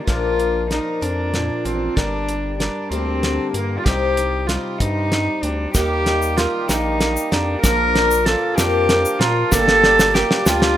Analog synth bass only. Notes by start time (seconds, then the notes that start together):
0.07 A#1
1.02 F2
1.65 A1
1.97 G1
2.91 D2
3.54 G2
3.86 C2
4.80 G2
5.43 D2
5.75 D#2
6.69 A#1
7.32 F2
7.64 A#1
8.58 F2
9.20 A#2
9.52 G1
10.46 D2